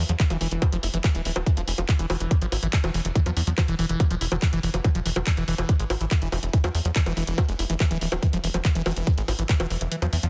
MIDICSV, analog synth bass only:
0, 0, Header, 1, 2, 480
1, 0, Start_track
1, 0, Tempo, 422535
1, 1664, Time_signature, 4, 2, 24, 8
1, 11696, End_track
2, 0, Start_track
2, 0, Title_t, "Analog synth bass"
2, 0, Program_c, 0, 38
2, 104, Note_on_c, 0, 40, 93
2, 176, Note_off_c, 0, 40, 0
2, 344, Note_on_c, 0, 28, 86
2, 416, Note_off_c, 0, 28, 0
2, 464, Note_on_c, 0, 28, 101
2, 536, Note_off_c, 0, 28, 0
2, 584, Note_on_c, 0, 28, 90
2, 656, Note_off_c, 0, 28, 0
2, 824, Note_on_c, 0, 29, 95
2, 896, Note_off_c, 0, 29, 0
2, 944, Note_on_c, 0, 29, 105
2, 1016, Note_off_c, 0, 29, 0
2, 1064, Note_on_c, 0, 29, 92
2, 1136, Note_off_c, 0, 29, 0
2, 1304, Note_on_c, 0, 26, 88
2, 1376, Note_off_c, 0, 26, 0
2, 1424, Note_on_c, 0, 26, 104
2, 1496, Note_off_c, 0, 26, 0
2, 1544, Note_on_c, 0, 26, 88
2, 1616, Note_off_c, 0, 26, 0
2, 1784, Note_on_c, 0, 28, 84
2, 1856, Note_off_c, 0, 28, 0
2, 1904, Note_on_c, 0, 28, 100
2, 1976, Note_off_c, 0, 28, 0
2, 2024, Note_on_c, 0, 28, 93
2, 2096, Note_off_c, 0, 28, 0
2, 2264, Note_on_c, 0, 28, 89
2, 2336, Note_off_c, 0, 28, 0
2, 2384, Note_on_c, 0, 28, 96
2, 2456, Note_off_c, 0, 28, 0
2, 2504, Note_on_c, 0, 28, 95
2, 2576, Note_off_c, 0, 28, 0
2, 2744, Note_on_c, 0, 32, 92
2, 2816, Note_off_c, 0, 32, 0
2, 2864, Note_on_c, 0, 32, 100
2, 2936, Note_off_c, 0, 32, 0
2, 2984, Note_on_c, 0, 32, 92
2, 3056, Note_off_c, 0, 32, 0
2, 3224, Note_on_c, 0, 28, 89
2, 3296, Note_off_c, 0, 28, 0
2, 3344, Note_on_c, 0, 28, 107
2, 3416, Note_off_c, 0, 28, 0
2, 3464, Note_on_c, 0, 28, 91
2, 3536, Note_off_c, 0, 28, 0
2, 3703, Note_on_c, 0, 40, 84
2, 3776, Note_off_c, 0, 40, 0
2, 3824, Note_on_c, 0, 40, 100
2, 3896, Note_off_c, 0, 40, 0
2, 3943, Note_on_c, 0, 40, 95
2, 4016, Note_off_c, 0, 40, 0
2, 4183, Note_on_c, 0, 28, 86
2, 4256, Note_off_c, 0, 28, 0
2, 4304, Note_on_c, 0, 28, 97
2, 4376, Note_off_c, 0, 28, 0
2, 4423, Note_on_c, 0, 28, 91
2, 4496, Note_off_c, 0, 28, 0
2, 4664, Note_on_c, 0, 28, 94
2, 4736, Note_off_c, 0, 28, 0
2, 4783, Note_on_c, 0, 28, 102
2, 4856, Note_off_c, 0, 28, 0
2, 4904, Note_on_c, 0, 28, 92
2, 4976, Note_off_c, 0, 28, 0
2, 5143, Note_on_c, 0, 29, 86
2, 5216, Note_off_c, 0, 29, 0
2, 5263, Note_on_c, 0, 29, 103
2, 5336, Note_off_c, 0, 29, 0
2, 5383, Note_on_c, 0, 29, 90
2, 5456, Note_off_c, 0, 29, 0
2, 5623, Note_on_c, 0, 28, 88
2, 5696, Note_off_c, 0, 28, 0
2, 5743, Note_on_c, 0, 28, 99
2, 5816, Note_off_c, 0, 28, 0
2, 5863, Note_on_c, 0, 28, 89
2, 5936, Note_off_c, 0, 28, 0
2, 6103, Note_on_c, 0, 28, 87
2, 6176, Note_off_c, 0, 28, 0
2, 6223, Note_on_c, 0, 28, 96
2, 6296, Note_off_c, 0, 28, 0
2, 6343, Note_on_c, 0, 28, 97
2, 6416, Note_off_c, 0, 28, 0
2, 6583, Note_on_c, 0, 32, 93
2, 6656, Note_off_c, 0, 32, 0
2, 6703, Note_on_c, 0, 32, 103
2, 6776, Note_off_c, 0, 32, 0
2, 6823, Note_on_c, 0, 32, 91
2, 6896, Note_off_c, 0, 32, 0
2, 7063, Note_on_c, 0, 28, 84
2, 7136, Note_off_c, 0, 28, 0
2, 7183, Note_on_c, 0, 28, 105
2, 7256, Note_off_c, 0, 28, 0
2, 7303, Note_on_c, 0, 28, 88
2, 7376, Note_off_c, 0, 28, 0
2, 7543, Note_on_c, 0, 40, 88
2, 7616, Note_off_c, 0, 40, 0
2, 7663, Note_on_c, 0, 40, 98
2, 7736, Note_off_c, 0, 40, 0
2, 7783, Note_on_c, 0, 40, 88
2, 7856, Note_off_c, 0, 40, 0
2, 8023, Note_on_c, 0, 28, 86
2, 8096, Note_off_c, 0, 28, 0
2, 8143, Note_on_c, 0, 28, 95
2, 8216, Note_off_c, 0, 28, 0
2, 8263, Note_on_c, 0, 28, 91
2, 8336, Note_off_c, 0, 28, 0
2, 8504, Note_on_c, 0, 29, 93
2, 8576, Note_off_c, 0, 29, 0
2, 8623, Note_on_c, 0, 29, 100
2, 8696, Note_off_c, 0, 29, 0
2, 8743, Note_on_c, 0, 29, 91
2, 8816, Note_off_c, 0, 29, 0
2, 8983, Note_on_c, 0, 26, 88
2, 9056, Note_off_c, 0, 26, 0
2, 9103, Note_on_c, 0, 26, 106
2, 9176, Note_off_c, 0, 26, 0
2, 9223, Note_on_c, 0, 26, 92
2, 9296, Note_off_c, 0, 26, 0
2, 9464, Note_on_c, 0, 28, 89
2, 9536, Note_off_c, 0, 28, 0
2, 9584, Note_on_c, 0, 28, 100
2, 9656, Note_off_c, 0, 28, 0
2, 9704, Note_on_c, 0, 28, 91
2, 9776, Note_off_c, 0, 28, 0
2, 9944, Note_on_c, 0, 28, 88
2, 10016, Note_off_c, 0, 28, 0
2, 10064, Note_on_c, 0, 28, 100
2, 10136, Note_off_c, 0, 28, 0
2, 10184, Note_on_c, 0, 28, 91
2, 10256, Note_off_c, 0, 28, 0
2, 10424, Note_on_c, 0, 32, 96
2, 10496, Note_off_c, 0, 32, 0
2, 10544, Note_on_c, 0, 32, 108
2, 10616, Note_off_c, 0, 32, 0
2, 10664, Note_on_c, 0, 32, 89
2, 10736, Note_off_c, 0, 32, 0
2, 10904, Note_on_c, 0, 28, 88
2, 10976, Note_off_c, 0, 28, 0
2, 11024, Note_on_c, 0, 28, 103
2, 11096, Note_off_c, 0, 28, 0
2, 11144, Note_on_c, 0, 28, 87
2, 11216, Note_off_c, 0, 28, 0
2, 11384, Note_on_c, 0, 40, 84
2, 11456, Note_off_c, 0, 40, 0
2, 11504, Note_on_c, 0, 40, 99
2, 11576, Note_off_c, 0, 40, 0
2, 11624, Note_on_c, 0, 40, 93
2, 11696, Note_off_c, 0, 40, 0
2, 11696, End_track
0, 0, End_of_file